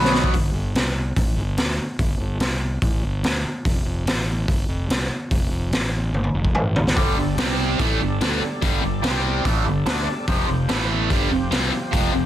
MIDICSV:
0, 0, Header, 1, 7, 480
1, 0, Start_track
1, 0, Tempo, 414079
1, 389, Time_signature, 4, 2, 24, 8
1, 14209, End_track
2, 0, Start_track
2, 0, Title_t, "Tonewheel organ"
2, 0, Program_c, 0, 16
2, 0, Note_on_c, 0, 59, 65
2, 0, Note_on_c, 0, 66, 63
2, 0, Note_on_c, 0, 71, 70
2, 377, Note_off_c, 0, 59, 0
2, 384, Note_off_c, 0, 66, 0
2, 388, Note_off_c, 0, 71, 0
2, 8069, Note_on_c, 0, 55, 53
2, 8070, Note_on_c, 0, 62, 47
2, 8079, Note_on_c, 0, 69, 55
2, 8546, Note_off_c, 0, 55, 0
2, 8547, Note_off_c, 0, 62, 0
2, 8552, Note_off_c, 0, 69, 0
2, 8553, Note_on_c, 0, 67, 52
2, 8559, Note_on_c, 0, 60, 56
2, 8561, Note_on_c, 0, 74, 60
2, 9027, Note_on_c, 0, 69, 63
2, 9028, Note_off_c, 0, 67, 0
2, 9029, Note_on_c, 0, 62, 51
2, 9030, Note_on_c, 0, 55, 59
2, 9031, Note_off_c, 0, 60, 0
2, 9032, Note_off_c, 0, 74, 0
2, 10453, Note_on_c, 0, 60, 56
2, 10454, Note_off_c, 0, 69, 0
2, 10454, Note_on_c, 0, 74, 66
2, 10456, Note_off_c, 0, 55, 0
2, 10456, Note_off_c, 0, 62, 0
2, 10456, Note_on_c, 0, 67, 53
2, 10937, Note_off_c, 0, 60, 0
2, 10938, Note_off_c, 0, 74, 0
2, 10939, Note_off_c, 0, 67, 0
2, 10946, Note_on_c, 0, 69, 66
2, 10947, Note_on_c, 0, 55, 57
2, 10952, Note_on_c, 0, 62, 53
2, 11898, Note_off_c, 0, 55, 0
2, 11898, Note_off_c, 0, 69, 0
2, 11901, Note_off_c, 0, 62, 0
2, 11925, Note_on_c, 0, 53, 52
2, 11931, Note_on_c, 0, 60, 53
2, 11935, Note_on_c, 0, 67, 63
2, 12393, Note_off_c, 0, 53, 0
2, 12395, Note_off_c, 0, 60, 0
2, 12397, Note_off_c, 0, 67, 0
2, 12397, Note_on_c, 0, 57, 57
2, 12403, Note_on_c, 0, 71, 63
2, 12404, Note_on_c, 0, 64, 57
2, 12866, Note_on_c, 0, 60, 55
2, 12867, Note_on_c, 0, 53, 62
2, 12868, Note_off_c, 0, 57, 0
2, 12870, Note_on_c, 0, 67, 67
2, 12871, Note_off_c, 0, 71, 0
2, 12872, Note_off_c, 0, 64, 0
2, 14209, Note_off_c, 0, 53, 0
2, 14209, Note_off_c, 0, 60, 0
2, 14209, Note_off_c, 0, 67, 0
2, 14209, End_track
3, 0, Start_track
3, 0, Title_t, "Overdriven electric guitar"
3, 0, Program_c, 1, 29
3, 0, Note_on_c, 1, 47, 83
3, 0, Note_on_c, 1, 54, 95
3, 0, Note_on_c, 1, 59, 93
3, 380, Note_off_c, 1, 47, 0
3, 385, Note_off_c, 1, 54, 0
3, 387, Note_off_c, 1, 59, 0
3, 8067, Note_on_c, 1, 43, 78
3, 8080, Note_on_c, 1, 50, 78
3, 8089, Note_on_c, 1, 55, 91
3, 8297, Note_off_c, 1, 43, 0
3, 8304, Note_off_c, 1, 50, 0
3, 8311, Note_on_c, 1, 43, 51
3, 8314, Note_off_c, 1, 55, 0
3, 8318, Note_on_c, 1, 50, 60
3, 8504, Note_off_c, 1, 43, 0
3, 8508, Note_off_c, 1, 50, 0
3, 8555, Note_on_c, 1, 48, 84
3, 8565, Note_on_c, 1, 55, 81
3, 8568, Note_on_c, 1, 60, 84
3, 9026, Note_off_c, 1, 48, 0
3, 9031, Note_off_c, 1, 55, 0
3, 9032, Note_on_c, 1, 45, 70
3, 9033, Note_off_c, 1, 60, 0
3, 9044, Note_on_c, 1, 52, 77
3, 9046, Note_on_c, 1, 57, 84
3, 9265, Note_off_c, 1, 45, 0
3, 9271, Note_off_c, 1, 52, 0
3, 9272, Note_off_c, 1, 57, 0
3, 9273, Note_on_c, 1, 50, 59
3, 9275, Note_on_c, 1, 43, 52
3, 9465, Note_off_c, 1, 50, 0
3, 9466, Note_off_c, 1, 43, 0
3, 9516, Note_on_c, 1, 50, 80
3, 9524, Note_on_c, 1, 57, 75
3, 9529, Note_on_c, 1, 62, 79
3, 9747, Note_off_c, 1, 50, 0
3, 9751, Note_off_c, 1, 57, 0
3, 9754, Note_off_c, 1, 62, 0
3, 9986, Note_on_c, 1, 43, 86
3, 9995, Note_on_c, 1, 50, 79
3, 10002, Note_on_c, 1, 55, 80
3, 10213, Note_off_c, 1, 43, 0
3, 10219, Note_off_c, 1, 50, 0
3, 10227, Note_on_c, 1, 43, 52
3, 10230, Note_off_c, 1, 55, 0
3, 10233, Note_on_c, 1, 50, 62
3, 10422, Note_off_c, 1, 43, 0
3, 10424, Note_off_c, 1, 50, 0
3, 10468, Note_on_c, 1, 48, 75
3, 10477, Note_on_c, 1, 55, 92
3, 10483, Note_on_c, 1, 60, 90
3, 10942, Note_off_c, 1, 48, 0
3, 10947, Note_off_c, 1, 55, 0
3, 10950, Note_off_c, 1, 60, 0
3, 10950, Note_on_c, 1, 45, 78
3, 10960, Note_on_c, 1, 52, 79
3, 10965, Note_on_c, 1, 57, 81
3, 11183, Note_off_c, 1, 45, 0
3, 11188, Note_off_c, 1, 52, 0
3, 11191, Note_off_c, 1, 57, 0
3, 11198, Note_on_c, 1, 43, 53
3, 11202, Note_on_c, 1, 50, 58
3, 11386, Note_off_c, 1, 43, 0
3, 11388, Note_off_c, 1, 50, 0
3, 11429, Note_on_c, 1, 50, 78
3, 11436, Note_on_c, 1, 57, 78
3, 11449, Note_on_c, 1, 62, 87
3, 11663, Note_off_c, 1, 50, 0
3, 11666, Note_off_c, 1, 57, 0
3, 11672, Note_off_c, 1, 62, 0
3, 11914, Note_on_c, 1, 41, 84
3, 11919, Note_on_c, 1, 48, 80
3, 11925, Note_on_c, 1, 53, 88
3, 12132, Note_off_c, 1, 41, 0
3, 12134, Note_off_c, 1, 48, 0
3, 12146, Note_on_c, 1, 41, 56
3, 12148, Note_on_c, 1, 48, 61
3, 12150, Note_off_c, 1, 53, 0
3, 12340, Note_off_c, 1, 41, 0
3, 12341, Note_off_c, 1, 48, 0
3, 12386, Note_on_c, 1, 45, 76
3, 12394, Note_on_c, 1, 52, 91
3, 12404, Note_on_c, 1, 57, 87
3, 12860, Note_off_c, 1, 45, 0
3, 12864, Note_off_c, 1, 52, 0
3, 12864, Note_on_c, 1, 43, 86
3, 12869, Note_off_c, 1, 57, 0
3, 12875, Note_on_c, 1, 50, 83
3, 12879, Note_on_c, 1, 55, 86
3, 13099, Note_off_c, 1, 43, 0
3, 13102, Note_off_c, 1, 50, 0
3, 13106, Note_off_c, 1, 55, 0
3, 13106, Note_on_c, 1, 41, 59
3, 13106, Note_on_c, 1, 48, 63
3, 13299, Note_off_c, 1, 41, 0
3, 13299, Note_off_c, 1, 48, 0
3, 13341, Note_on_c, 1, 48, 80
3, 13346, Note_on_c, 1, 55, 88
3, 13355, Note_on_c, 1, 60, 87
3, 13577, Note_off_c, 1, 48, 0
3, 13579, Note_off_c, 1, 55, 0
3, 13584, Note_off_c, 1, 60, 0
3, 13818, Note_on_c, 1, 41, 85
3, 13825, Note_on_c, 1, 48, 88
3, 13836, Note_on_c, 1, 53, 88
3, 14050, Note_off_c, 1, 41, 0
3, 14055, Note_off_c, 1, 48, 0
3, 14063, Note_off_c, 1, 53, 0
3, 14064, Note_on_c, 1, 41, 59
3, 14069, Note_on_c, 1, 48, 63
3, 14209, Note_off_c, 1, 41, 0
3, 14209, Note_off_c, 1, 48, 0
3, 14209, End_track
4, 0, Start_track
4, 0, Title_t, "Fingered electric bass"
4, 0, Program_c, 2, 33
4, 0, Note_on_c, 2, 35, 93
4, 358, Note_off_c, 2, 35, 0
4, 391, Note_on_c, 2, 31, 73
4, 613, Note_off_c, 2, 31, 0
4, 625, Note_on_c, 2, 31, 61
4, 850, Note_off_c, 2, 31, 0
4, 864, Note_on_c, 2, 36, 76
4, 1312, Note_off_c, 2, 36, 0
4, 1348, Note_on_c, 2, 33, 74
4, 1571, Note_off_c, 2, 33, 0
4, 1587, Note_on_c, 2, 31, 66
4, 1811, Note_off_c, 2, 31, 0
4, 1826, Note_on_c, 2, 38, 78
4, 2050, Note_off_c, 2, 38, 0
4, 2303, Note_on_c, 2, 31, 76
4, 2529, Note_off_c, 2, 31, 0
4, 2546, Note_on_c, 2, 31, 63
4, 2771, Note_off_c, 2, 31, 0
4, 2784, Note_on_c, 2, 36, 76
4, 3233, Note_off_c, 2, 36, 0
4, 3266, Note_on_c, 2, 33, 73
4, 3491, Note_off_c, 2, 33, 0
4, 3513, Note_on_c, 2, 31, 71
4, 3735, Note_off_c, 2, 31, 0
4, 3747, Note_on_c, 2, 38, 78
4, 3972, Note_off_c, 2, 38, 0
4, 4233, Note_on_c, 2, 29, 79
4, 4455, Note_off_c, 2, 29, 0
4, 4463, Note_on_c, 2, 29, 64
4, 4690, Note_off_c, 2, 29, 0
4, 4704, Note_on_c, 2, 33, 80
4, 5154, Note_off_c, 2, 33, 0
4, 5194, Note_on_c, 2, 31, 79
4, 5416, Note_off_c, 2, 31, 0
4, 5427, Note_on_c, 2, 29, 66
4, 5653, Note_off_c, 2, 29, 0
4, 5663, Note_on_c, 2, 36, 73
4, 5891, Note_off_c, 2, 36, 0
4, 6155, Note_on_c, 2, 29, 77
4, 6377, Note_off_c, 2, 29, 0
4, 6382, Note_on_c, 2, 29, 66
4, 6611, Note_off_c, 2, 29, 0
4, 6620, Note_on_c, 2, 33, 79
4, 7073, Note_off_c, 2, 33, 0
4, 7106, Note_on_c, 2, 31, 73
4, 7333, Note_off_c, 2, 31, 0
4, 7349, Note_on_c, 2, 29, 66
4, 7574, Note_off_c, 2, 29, 0
4, 7591, Note_on_c, 2, 33, 78
4, 8038, Note_off_c, 2, 33, 0
4, 8076, Note_on_c, 2, 31, 74
4, 8298, Note_off_c, 2, 31, 0
4, 8305, Note_on_c, 2, 31, 66
4, 8532, Note_off_c, 2, 31, 0
4, 8543, Note_on_c, 2, 36, 79
4, 8994, Note_off_c, 2, 36, 0
4, 9030, Note_on_c, 2, 33, 78
4, 9255, Note_off_c, 2, 33, 0
4, 9277, Note_on_c, 2, 31, 68
4, 9498, Note_off_c, 2, 31, 0
4, 9516, Note_on_c, 2, 38, 74
4, 9737, Note_off_c, 2, 38, 0
4, 9994, Note_on_c, 2, 31, 76
4, 10216, Note_off_c, 2, 31, 0
4, 10237, Note_on_c, 2, 31, 69
4, 10457, Note_off_c, 2, 31, 0
4, 10472, Note_on_c, 2, 36, 83
4, 10918, Note_off_c, 2, 36, 0
4, 10951, Note_on_c, 2, 33, 79
4, 11174, Note_off_c, 2, 33, 0
4, 11192, Note_on_c, 2, 31, 73
4, 11415, Note_off_c, 2, 31, 0
4, 11434, Note_on_c, 2, 38, 83
4, 11656, Note_off_c, 2, 38, 0
4, 11914, Note_on_c, 2, 29, 85
4, 12135, Note_off_c, 2, 29, 0
4, 12155, Note_on_c, 2, 29, 64
4, 12375, Note_off_c, 2, 29, 0
4, 12389, Note_on_c, 2, 33, 84
4, 12835, Note_off_c, 2, 33, 0
4, 12869, Note_on_c, 2, 31, 83
4, 13092, Note_off_c, 2, 31, 0
4, 13106, Note_on_c, 2, 29, 69
4, 13330, Note_off_c, 2, 29, 0
4, 13344, Note_on_c, 2, 36, 78
4, 13569, Note_off_c, 2, 36, 0
4, 13829, Note_on_c, 2, 29, 84
4, 14051, Note_off_c, 2, 29, 0
4, 14069, Note_on_c, 2, 29, 71
4, 14209, Note_off_c, 2, 29, 0
4, 14209, End_track
5, 0, Start_track
5, 0, Title_t, "Muted fingered electric bass strokes"
5, 2068, Note_on_c, 9, 29, 34
5, 2184, Note_off_c, 9, 29, 0
5, 3990, Note_on_c, 9, 29, 37
5, 4106, Note_off_c, 9, 29, 0
5, 5902, Note_on_c, 9, 29, 36
5, 6018, Note_off_c, 9, 29, 0
5, 9760, Note_on_c, 9, 29, 36
5, 9876, Note_off_c, 9, 29, 0
5, 11673, Note_on_c, 9, 29, 37
5, 11789, Note_off_c, 9, 29, 0
5, 13588, Note_on_c, 9, 29, 39
5, 13704, Note_off_c, 9, 29, 0
5, 14209, End_track
6, 0, Start_track
6, 0, Title_t, "Muted overdriven electric guitar strokes"
6, 9758, Note_on_c, 9, 29, 51
6, 9874, Note_off_c, 9, 29, 0
6, 11677, Note_on_c, 9, 29, 49
6, 11793, Note_off_c, 9, 29, 0
6, 13583, Note_on_c, 9, 29, 52
6, 13699, Note_off_c, 9, 29, 0
6, 14209, End_track
7, 0, Start_track
7, 0, Title_t, "Drums"
7, 54, Note_on_c, 9, 38, 67
7, 166, Note_off_c, 9, 38, 0
7, 166, Note_on_c, 9, 38, 87
7, 275, Note_on_c, 9, 36, 90
7, 281, Note_off_c, 9, 38, 0
7, 391, Note_off_c, 9, 36, 0
7, 392, Note_on_c, 9, 36, 94
7, 396, Note_on_c, 9, 46, 46
7, 508, Note_off_c, 9, 36, 0
7, 512, Note_off_c, 9, 46, 0
7, 873, Note_on_c, 9, 46, 42
7, 882, Note_on_c, 9, 38, 94
7, 988, Note_off_c, 9, 46, 0
7, 998, Note_off_c, 9, 38, 0
7, 1350, Note_on_c, 9, 36, 86
7, 1352, Note_on_c, 9, 46, 43
7, 1466, Note_off_c, 9, 36, 0
7, 1468, Note_off_c, 9, 46, 0
7, 1825, Note_on_c, 9, 46, 44
7, 1835, Note_on_c, 9, 38, 97
7, 1941, Note_off_c, 9, 46, 0
7, 1951, Note_off_c, 9, 38, 0
7, 2309, Note_on_c, 9, 36, 99
7, 2312, Note_on_c, 9, 46, 46
7, 2425, Note_off_c, 9, 36, 0
7, 2428, Note_off_c, 9, 46, 0
7, 2783, Note_on_c, 9, 46, 42
7, 2792, Note_on_c, 9, 38, 90
7, 2898, Note_off_c, 9, 46, 0
7, 2908, Note_off_c, 9, 38, 0
7, 3267, Note_on_c, 9, 46, 38
7, 3269, Note_on_c, 9, 36, 85
7, 3383, Note_off_c, 9, 46, 0
7, 3385, Note_off_c, 9, 36, 0
7, 3754, Note_on_c, 9, 46, 42
7, 3763, Note_on_c, 9, 38, 94
7, 3870, Note_off_c, 9, 46, 0
7, 3879, Note_off_c, 9, 38, 0
7, 4234, Note_on_c, 9, 36, 93
7, 4240, Note_on_c, 9, 46, 47
7, 4350, Note_off_c, 9, 36, 0
7, 4356, Note_off_c, 9, 46, 0
7, 4719, Note_on_c, 9, 46, 45
7, 4729, Note_on_c, 9, 38, 93
7, 4835, Note_off_c, 9, 46, 0
7, 4845, Note_off_c, 9, 38, 0
7, 5196, Note_on_c, 9, 36, 91
7, 5205, Note_on_c, 9, 46, 44
7, 5312, Note_off_c, 9, 36, 0
7, 5321, Note_off_c, 9, 46, 0
7, 5682, Note_on_c, 9, 46, 47
7, 5691, Note_on_c, 9, 38, 96
7, 5798, Note_off_c, 9, 46, 0
7, 5807, Note_off_c, 9, 38, 0
7, 6156, Note_on_c, 9, 36, 98
7, 6160, Note_on_c, 9, 46, 48
7, 6272, Note_off_c, 9, 36, 0
7, 6276, Note_off_c, 9, 46, 0
7, 6636, Note_on_c, 9, 46, 44
7, 6646, Note_on_c, 9, 38, 92
7, 6752, Note_off_c, 9, 46, 0
7, 6762, Note_off_c, 9, 38, 0
7, 7120, Note_on_c, 9, 48, 50
7, 7231, Note_off_c, 9, 48, 0
7, 7231, Note_on_c, 9, 48, 47
7, 7347, Note_off_c, 9, 48, 0
7, 7472, Note_on_c, 9, 36, 54
7, 7588, Note_off_c, 9, 36, 0
7, 7589, Note_on_c, 9, 45, 64
7, 7705, Note_off_c, 9, 45, 0
7, 7836, Note_on_c, 9, 43, 75
7, 7952, Note_off_c, 9, 43, 0
7, 7965, Note_on_c, 9, 38, 66
7, 8077, Note_on_c, 9, 36, 95
7, 8080, Note_off_c, 9, 38, 0
7, 8084, Note_on_c, 9, 46, 46
7, 8193, Note_off_c, 9, 36, 0
7, 8200, Note_off_c, 9, 46, 0
7, 8553, Note_on_c, 9, 46, 44
7, 8562, Note_on_c, 9, 38, 96
7, 8669, Note_off_c, 9, 46, 0
7, 8678, Note_off_c, 9, 38, 0
7, 9036, Note_on_c, 9, 36, 87
7, 9037, Note_on_c, 9, 46, 42
7, 9152, Note_off_c, 9, 36, 0
7, 9153, Note_off_c, 9, 46, 0
7, 9517, Note_on_c, 9, 46, 48
7, 9526, Note_on_c, 9, 38, 102
7, 9633, Note_off_c, 9, 46, 0
7, 9642, Note_off_c, 9, 38, 0
7, 9997, Note_on_c, 9, 36, 98
7, 9997, Note_on_c, 9, 46, 49
7, 10113, Note_off_c, 9, 36, 0
7, 10113, Note_off_c, 9, 46, 0
7, 10474, Note_on_c, 9, 46, 44
7, 10483, Note_on_c, 9, 38, 90
7, 10590, Note_off_c, 9, 46, 0
7, 10599, Note_off_c, 9, 38, 0
7, 10957, Note_on_c, 9, 36, 94
7, 10959, Note_on_c, 9, 46, 41
7, 11073, Note_off_c, 9, 36, 0
7, 11075, Note_off_c, 9, 46, 0
7, 11432, Note_on_c, 9, 46, 42
7, 11441, Note_on_c, 9, 38, 93
7, 11548, Note_off_c, 9, 46, 0
7, 11557, Note_off_c, 9, 38, 0
7, 11914, Note_on_c, 9, 36, 102
7, 11918, Note_on_c, 9, 46, 44
7, 12030, Note_off_c, 9, 36, 0
7, 12034, Note_off_c, 9, 46, 0
7, 12391, Note_on_c, 9, 46, 42
7, 12400, Note_on_c, 9, 38, 95
7, 12507, Note_off_c, 9, 46, 0
7, 12516, Note_off_c, 9, 38, 0
7, 12871, Note_on_c, 9, 36, 93
7, 12875, Note_on_c, 9, 46, 45
7, 12987, Note_off_c, 9, 36, 0
7, 12991, Note_off_c, 9, 46, 0
7, 13352, Note_on_c, 9, 46, 46
7, 13361, Note_on_c, 9, 38, 99
7, 13468, Note_off_c, 9, 46, 0
7, 13477, Note_off_c, 9, 38, 0
7, 13829, Note_on_c, 9, 36, 98
7, 13834, Note_on_c, 9, 46, 50
7, 13945, Note_off_c, 9, 36, 0
7, 13949, Note_off_c, 9, 46, 0
7, 14209, End_track
0, 0, End_of_file